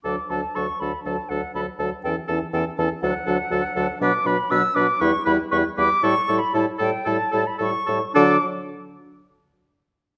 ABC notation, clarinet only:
X:1
M:4/4
L:1/8
Q:1/4=118
K:D
V:1 name="Clarinet"
D D D D D D D D | C C C C D D D D | D D D D E E E E | E E E E E E E E |
D z6 z |]